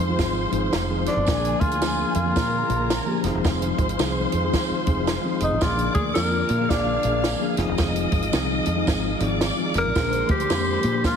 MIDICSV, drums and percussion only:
0, 0, Header, 1, 2, 480
1, 0, Start_track
1, 0, Tempo, 542495
1, 1128, Time_signature, 4, 2, 24, 8
1, 9877, End_track
2, 0, Start_track
2, 0, Title_t, "Drums"
2, 165, Note_on_c, 9, 54, 78
2, 167, Note_on_c, 9, 36, 82
2, 170, Note_on_c, 9, 38, 106
2, 172, Note_on_c, 9, 42, 91
2, 254, Note_off_c, 9, 54, 0
2, 255, Note_off_c, 9, 36, 0
2, 259, Note_off_c, 9, 38, 0
2, 260, Note_off_c, 9, 42, 0
2, 463, Note_on_c, 9, 42, 73
2, 552, Note_off_c, 9, 42, 0
2, 644, Note_on_c, 9, 38, 109
2, 645, Note_on_c, 9, 42, 97
2, 646, Note_on_c, 9, 54, 77
2, 732, Note_off_c, 9, 38, 0
2, 733, Note_off_c, 9, 42, 0
2, 734, Note_off_c, 9, 54, 0
2, 940, Note_on_c, 9, 42, 77
2, 953, Note_on_c, 9, 38, 34
2, 1028, Note_off_c, 9, 42, 0
2, 1041, Note_off_c, 9, 38, 0
2, 1118, Note_on_c, 9, 54, 67
2, 1130, Note_on_c, 9, 36, 112
2, 1131, Note_on_c, 9, 42, 93
2, 1133, Note_on_c, 9, 38, 96
2, 1207, Note_off_c, 9, 54, 0
2, 1218, Note_off_c, 9, 36, 0
2, 1219, Note_off_c, 9, 42, 0
2, 1222, Note_off_c, 9, 38, 0
2, 1280, Note_on_c, 9, 42, 59
2, 1368, Note_off_c, 9, 42, 0
2, 1425, Note_on_c, 9, 42, 66
2, 1427, Note_on_c, 9, 36, 98
2, 1514, Note_off_c, 9, 42, 0
2, 1515, Note_off_c, 9, 36, 0
2, 1516, Note_on_c, 9, 42, 58
2, 1605, Note_off_c, 9, 42, 0
2, 1605, Note_on_c, 9, 42, 89
2, 1610, Note_on_c, 9, 38, 108
2, 1612, Note_on_c, 9, 54, 105
2, 1694, Note_off_c, 9, 42, 0
2, 1699, Note_off_c, 9, 38, 0
2, 1701, Note_off_c, 9, 54, 0
2, 1898, Note_on_c, 9, 42, 91
2, 1986, Note_off_c, 9, 42, 0
2, 2087, Note_on_c, 9, 54, 81
2, 2090, Note_on_c, 9, 36, 87
2, 2094, Note_on_c, 9, 38, 110
2, 2096, Note_on_c, 9, 42, 104
2, 2176, Note_off_c, 9, 54, 0
2, 2178, Note_off_c, 9, 36, 0
2, 2183, Note_off_c, 9, 38, 0
2, 2184, Note_off_c, 9, 42, 0
2, 2385, Note_on_c, 9, 42, 78
2, 2474, Note_off_c, 9, 42, 0
2, 2568, Note_on_c, 9, 38, 115
2, 2568, Note_on_c, 9, 54, 78
2, 2569, Note_on_c, 9, 42, 96
2, 2656, Note_off_c, 9, 54, 0
2, 2657, Note_off_c, 9, 38, 0
2, 2658, Note_off_c, 9, 42, 0
2, 2863, Note_on_c, 9, 42, 76
2, 2876, Note_on_c, 9, 38, 34
2, 2952, Note_off_c, 9, 42, 0
2, 2964, Note_off_c, 9, 38, 0
2, 3047, Note_on_c, 9, 54, 67
2, 3051, Note_on_c, 9, 36, 110
2, 3052, Note_on_c, 9, 42, 86
2, 3055, Note_on_c, 9, 38, 104
2, 3136, Note_off_c, 9, 54, 0
2, 3139, Note_off_c, 9, 36, 0
2, 3140, Note_off_c, 9, 42, 0
2, 3143, Note_off_c, 9, 38, 0
2, 3201, Note_on_c, 9, 42, 59
2, 3290, Note_off_c, 9, 42, 0
2, 3347, Note_on_c, 9, 42, 67
2, 3349, Note_on_c, 9, 36, 90
2, 3435, Note_off_c, 9, 42, 0
2, 3437, Note_off_c, 9, 36, 0
2, 3441, Note_on_c, 9, 42, 55
2, 3530, Note_off_c, 9, 42, 0
2, 3532, Note_on_c, 9, 42, 90
2, 3532, Note_on_c, 9, 54, 103
2, 3537, Note_on_c, 9, 38, 111
2, 3620, Note_off_c, 9, 54, 0
2, 3621, Note_off_c, 9, 42, 0
2, 3626, Note_off_c, 9, 38, 0
2, 3823, Note_on_c, 9, 42, 79
2, 3911, Note_off_c, 9, 42, 0
2, 4012, Note_on_c, 9, 36, 82
2, 4013, Note_on_c, 9, 54, 83
2, 4016, Note_on_c, 9, 38, 111
2, 4018, Note_on_c, 9, 42, 95
2, 4101, Note_off_c, 9, 36, 0
2, 4101, Note_off_c, 9, 54, 0
2, 4105, Note_off_c, 9, 38, 0
2, 4106, Note_off_c, 9, 42, 0
2, 4305, Note_on_c, 9, 42, 68
2, 4311, Note_on_c, 9, 36, 87
2, 4394, Note_off_c, 9, 42, 0
2, 4399, Note_off_c, 9, 36, 0
2, 4488, Note_on_c, 9, 54, 74
2, 4491, Note_on_c, 9, 38, 111
2, 4492, Note_on_c, 9, 42, 96
2, 4577, Note_off_c, 9, 54, 0
2, 4579, Note_off_c, 9, 38, 0
2, 4580, Note_off_c, 9, 42, 0
2, 4782, Note_on_c, 9, 42, 80
2, 4870, Note_off_c, 9, 42, 0
2, 4963, Note_on_c, 9, 54, 75
2, 4966, Note_on_c, 9, 42, 87
2, 4969, Note_on_c, 9, 38, 104
2, 4971, Note_on_c, 9, 36, 104
2, 5052, Note_off_c, 9, 54, 0
2, 5054, Note_off_c, 9, 42, 0
2, 5057, Note_off_c, 9, 38, 0
2, 5059, Note_off_c, 9, 36, 0
2, 5119, Note_on_c, 9, 42, 54
2, 5207, Note_off_c, 9, 42, 0
2, 5260, Note_on_c, 9, 42, 67
2, 5266, Note_on_c, 9, 36, 95
2, 5349, Note_off_c, 9, 42, 0
2, 5355, Note_off_c, 9, 36, 0
2, 5442, Note_on_c, 9, 42, 81
2, 5447, Note_on_c, 9, 38, 114
2, 5448, Note_on_c, 9, 54, 102
2, 5530, Note_off_c, 9, 42, 0
2, 5535, Note_off_c, 9, 38, 0
2, 5537, Note_off_c, 9, 54, 0
2, 5739, Note_on_c, 9, 42, 90
2, 5828, Note_off_c, 9, 42, 0
2, 5931, Note_on_c, 9, 36, 91
2, 5932, Note_on_c, 9, 38, 105
2, 5933, Note_on_c, 9, 42, 100
2, 5933, Note_on_c, 9, 54, 86
2, 6019, Note_off_c, 9, 36, 0
2, 6020, Note_off_c, 9, 38, 0
2, 6021, Note_off_c, 9, 54, 0
2, 6022, Note_off_c, 9, 42, 0
2, 6219, Note_on_c, 9, 42, 76
2, 6307, Note_off_c, 9, 42, 0
2, 6405, Note_on_c, 9, 38, 109
2, 6406, Note_on_c, 9, 42, 96
2, 6413, Note_on_c, 9, 54, 85
2, 6493, Note_off_c, 9, 38, 0
2, 6494, Note_off_c, 9, 42, 0
2, 6501, Note_off_c, 9, 54, 0
2, 6698, Note_on_c, 9, 42, 73
2, 6711, Note_on_c, 9, 38, 35
2, 6787, Note_off_c, 9, 42, 0
2, 6800, Note_off_c, 9, 38, 0
2, 6881, Note_on_c, 9, 54, 72
2, 6884, Note_on_c, 9, 42, 83
2, 6887, Note_on_c, 9, 38, 98
2, 6890, Note_on_c, 9, 36, 109
2, 6970, Note_off_c, 9, 54, 0
2, 6972, Note_off_c, 9, 42, 0
2, 6975, Note_off_c, 9, 38, 0
2, 6978, Note_off_c, 9, 36, 0
2, 7040, Note_on_c, 9, 42, 57
2, 7128, Note_off_c, 9, 42, 0
2, 7182, Note_on_c, 9, 42, 72
2, 7187, Note_on_c, 9, 36, 97
2, 7270, Note_off_c, 9, 42, 0
2, 7276, Note_off_c, 9, 36, 0
2, 7276, Note_on_c, 9, 42, 55
2, 7365, Note_off_c, 9, 42, 0
2, 7369, Note_on_c, 9, 42, 97
2, 7369, Note_on_c, 9, 54, 109
2, 7374, Note_on_c, 9, 38, 110
2, 7457, Note_off_c, 9, 54, 0
2, 7458, Note_off_c, 9, 42, 0
2, 7463, Note_off_c, 9, 38, 0
2, 7659, Note_on_c, 9, 42, 79
2, 7747, Note_off_c, 9, 42, 0
2, 7849, Note_on_c, 9, 54, 80
2, 7852, Note_on_c, 9, 36, 86
2, 7857, Note_on_c, 9, 38, 109
2, 7858, Note_on_c, 9, 42, 97
2, 7937, Note_off_c, 9, 54, 0
2, 7941, Note_off_c, 9, 36, 0
2, 7945, Note_off_c, 9, 38, 0
2, 7947, Note_off_c, 9, 42, 0
2, 8142, Note_on_c, 9, 42, 75
2, 8231, Note_off_c, 9, 42, 0
2, 8325, Note_on_c, 9, 38, 108
2, 8326, Note_on_c, 9, 42, 96
2, 8328, Note_on_c, 9, 54, 77
2, 8414, Note_off_c, 9, 38, 0
2, 8415, Note_off_c, 9, 42, 0
2, 8417, Note_off_c, 9, 54, 0
2, 8618, Note_on_c, 9, 42, 79
2, 8631, Note_on_c, 9, 38, 34
2, 8707, Note_off_c, 9, 42, 0
2, 8719, Note_off_c, 9, 38, 0
2, 8807, Note_on_c, 9, 54, 76
2, 8809, Note_on_c, 9, 42, 81
2, 8812, Note_on_c, 9, 36, 104
2, 8812, Note_on_c, 9, 38, 102
2, 8895, Note_off_c, 9, 54, 0
2, 8897, Note_off_c, 9, 42, 0
2, 8900, Note_off_c, 9, 36, 0
2, 8900, Note_off_c, 9, 38, 0
2, 8958, Note_on_c, 9, 42, 53
2, 9047, Note_off_c, 9, 42, 0
2, 9102, Note_on_c, 9, 42, 71
2, 9108, Note_on_c, 9, 36, 104
2, 9190, Note_off_c, 9, 42, 0
2, 9197, Note_off_c, 9, 36, 0
2, 9200, Note_on_c, 9, 42, 61
2, 9288, Note_off_c, 9, 42, 0
2, 9289, Note_on_c, 9, 42, 91
2, 9290, Note_on_c, 9, 54, 107
2, 9294, Note_on_c, 9, 38, 115
2, 9377, Note_off_c, 9, 42, 0
2, 9379, Note_off_c, 9, 54, 0
2, 9382, Note_off_c, 9, 38, 0
2, 9580, Note_on_c, 9, 42, 87
2, 9669, Note_off_c, 9, 42, 0
2, 9771, Note_on_c, 9, 36, 92
2, 9772, Note_on_c, 9, 54, 80
2, 9775, Note_on_c, 9, 38, 101
2, 9777, Note_on_c, 9, 42, 97
2, 9859, Note_off_c, 9, 36, 0
2, 9860, Note_off_c, 9, 54, 0
2, 9863, Note_off_c, 9, 38, 0
2, 9865, Note_off_c, 9, 42, 0
2, 9877, End_track
0, 0, End_of_file